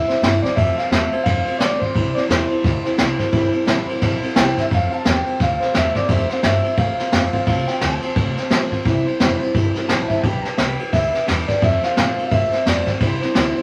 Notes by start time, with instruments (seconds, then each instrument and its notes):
Already playing: clean electric guitar E5
0.08 steel-string acoustic guitar G3 C4 E4 C5, snare, ride
0.21 upright bass G2, steel-string acoustic guitar C3 E3 G3 C4 E4 C5, snare, ride
0.42 steel-string acoustic guitar G3 C4 E4 C5, clean electric guitar D5, kick, snare, ride
0.56 upright bass F2, steel-string acoustic guitar F3 A3 C4 F4 C5, clean electric guitar E5, kick, ride
0.77 steel-string acoustic guitar C4 F4 C5, clean electric guitar F5, snare, ride
0.90 upright bass E2, steel-string acoustic guitar F3 A3 C4 F4 C5, clean electric guitar E5, snare, ride
1.12 steel-string acoustic guitar C4 F4 C5, ride
1.24 upright bass F2, steel-string acoustic guitar A3 C4 F4, clean electric guitar F5, kick, snare, ride
1.28 steel-string acoustic guitar C5
1.45 steel-string acoustic guitar C4 F4 C5, ride
1.59 upright bass D2, steel-string acoustic guitar F3 A3 C4 F4 C5, clean electric guitar D5, snare, ride
1.79 steel-string acoustic guitar C4 F4 C5, clean electric guitar C5, kick, ride
1.93 upright bass C2, steel-string acoustic guitar C3 E3 G3 C4 E4 C5, kick, ride
2.13 steel-string acoustic guitar G3 C4 E4 C5, clean electric guitar D5, muted upright bass stroke
2.17 snare, ride
2.27 upright bass E2, steel-string acoustic guitar C3 E3 G3 C4 E4 C5, clean electric guitar C5, snare, ride
2.48 steel-string acoustic guitar G3 C4 E4 C5, ride
2.62 upright bass D2, steel-string acoustic guitar G3 C4 E4 C5, kick, snare, ride
2.83 steel-string acoustic guitar G3 C4 E4 C5, muted upright bass stroke, snare, ride
2.96 upright bass C2, steel-string acoustic guitar C3 E3 G3 C4 E4 C5, snare, ride
3.18 steel-string acoustic guitar G3 C4 E4 C5, kick, snare, ride
3.31 upright bass G1, steel-string acoustic guitar C3 E3 G3 C4 E4 C5, kick, ride
3.52 steel-string acoustic guitar G3 C4 E4 C5, ride
3.65 upright bass A1, steel-string acoustic guitar C3 E3 G3 C4 E4 C5, snare, ride
3.86 steel-string acoustic guitar G3 C4 E4 C5, muted upright bass stroke, ride
4.00 upright bass A#1, steel-string acoustic guitar G3 C4 E4 C5, kick, snare, ride
4.20 steel-string acoustic guitar G3 C4 E4 C5, muted upright bass stroke, ride
4.34 upright bass C2, steel-string acoustic guitar C3 E3 G3 C4 E4 C5, snare, ride
4.39 clean electric guitar G5
4.55 steel-string acoustic guitar G3 C4 E4 C5, kick, snare, ride
4.60 clean electric guitar E5
4.69 upright bass F2, steel-string acoustic guitar F3 A3 C4 F4 C5, kick, ride
4.75 clean electric guitar F5
4.90 steel-string acoustic guitar C4 F4 C5, ride
4.94 clean electric guitar A5
5.05 upright bass E2, steel-string acoustic guitar F3 A3 C4 F4 C5, snare, ride
5.09 clean electric guitar G5
5.25 steel-string acoustic guitar C4 F4 C5, ride
5.38 upright bass D2, steel-string acoustic guitar A3 C4 F4 C5, clean electric guitar F5, kick, snare, ride
5.60 steel-string acoustic guitar C4 F4 C5, snare, ride
5.73 upright bass E2, steel-string acoustic guitar F3 A3 C4 F4 C5, clean electric guitar E5, snare, ride
5.94 steel-string acoustic guitar C4 F4 C5, clean electric guitar D5, kick, snare, ride
6.08 upright bass F2, steel-string acoustic guitar F3 A3 C4 F4 C5, clean electric guitar E5, kick, ride
6.29 steel-string acoustic guitar C4 F4 C5, clean electric guitar F5, snare, ride
6.43 upright bass G2, steel-string acoustic guitar F3 A3 C4 F4 C5, clean electric guitar E5, snare, ride
6.64 steel-string acoustic guitar C4 F4 C5, ride
6.77 upright bass A2, steel-string acoustic guitar A3 C4 F4 C5, clean electric guitar F5, kick, ride
6.98 steel-string acoustic guitar C4 F4 C5, muted upright bass stroke, snare, ride
7.11 upright bass F2, steel-string acoustic guitar F3 A3 C4 F4 C5, snare, ride
7.33 steel-string acoustic guitar C4 F4 C5, clean electric guitar F5, kick, ride
7.46 upright bass C2, steel-string acoustic guitar F3 A3 C4 F4 C5, clean electric guitar F5, kick, ride
7.67 steel-string acoustic guitar C4 F4 C5, clean electric guitar G5, muted upright bass stroke, snare, ride
7.81 upright bass D2, steel-string acoustic guitar F3 A3 C4 F4 C5, clean electric guitar A5, snare, ride
8.02 steel-string acoustic guitar C4 F4 C5, ride
8.16 upright bass C2, steel-string acoustic guitar A3 C4 F4 C5, kick, ride
8.36 steel-string acoustic guitar C4 F4 C5, muted upright bass stroke, snare, ride
8.50 upright bass D2, steel-string acoustic guitar F3 A3 C4 F4 C5, snare, ride
8.70 steel-string acoustic guitar C4 F4 C5, kick, ride
8.84 upright bass C2, steel-string acoustic guitar C3 E3 G3 C4 E4 C5, kick, ride
9.05 steel-string acoustic guitar G3 C4 E4 C5, muted upright bass stroke, ride
9.20 upright bass F1, steel-string acoustic guitar C3 E3 G3 C4 E4 C5, snare, ride
9.40 steel-string acoustic guitar G3 C4 E4 C5, ride
9.54 upright bass G1, steel-string acoustic guitar G3 C4 E4 C5, kick, ride
9.75 steel-string acoustic guitar G3 C4 E4 C5, muted upright bass stroke, snare, ride
9.89 upright bass A1, steel-string acoustic guitar C3 E3 G3 C4 E4 C5, clean electric guitar A5, snare, ride
10.08 steel-string acoustic guitar C4 E4 C5, clean electric guitar E5, kick, ride
10.13 steel-string acoustic guitar G3
10.19 clean electric guitar G5 A5
10.23 upright bass B1, steel-string acoustic guitar G3 D4 G4 B4, kick, ride
10.42 steel-string acoustic guitar G4 B4, clean electric guitar A5, muted upright bass stroke, snare, ride
10.47 steel-string acoustic guitar D4
10.57 upright bass C2, steel-string acoustic guitar G3 D4 G4 B4, clean electric guitar G5, snare, ride
10.79 steel-string acoustic guitar D4 G4 B4, ride
10.92 upright bass D2, steel-string acoustic guitar G3 D4 G4 B4, clean electric guitar E5, kick, snare, ride
11.13 steel-string acoustic guitar D4 G4 B4, snare, ride
11.26 upright bass E2, steel-string acoustic guitar G3 D4 G4 B4, snare, ride
11.48 steel-string acoustic guitar D4 G4 B4, clean electric guitar D5, kick, snare, ride
11.61 upright bass F2, steel-string acoustic guitar F3 A3 C4 F4 C5, clean electric guitar E5, kick, ride
11.83 steel-string acoustic guitar C4 F4 C5, clean electric guitar F5, snare, ride
11.96 upright bass A#2, steel-string acoustic guitar F3 A3 C4 F4 C5, snare, ride
12.17 steel-string acoustic guitar C4 F4 C5, muted upright bass stroke, ride
12.26 steel-string acoustic guitar A3, clean electric guitar F5
12.31 upright bass A2, steel-string acoustic guitar C4 F4 C5, clean electric guitar E5, kick, ride
12.51 steel-string acoustic guitar C4 F4 C5, muted upright bass stroke, snare, ride
12.65 upright bass F2, steel-string acoustic guitar F3 A3 C4 F4 C5, clean electric guitar D5, snare, ride
12.86 steel-string acoustic guitar C4 F4 C5, clean electric guitar C5, kick, snare, ride
13.00 upright bass C2, steel-string acoustic guitar C3 E3 G3 C4 E4 C5, clean electric guitar C5, kick, ride
13.21 steel-string acoustic guitar G3 C4 E4 C5, snare, ride
13.34 upright bass D2, steel-string acoustic guitar C3 E3 G3 C4 E4 C5, snare, ride
13.56 steel-string acoustic guitar C4 E4 C5, ride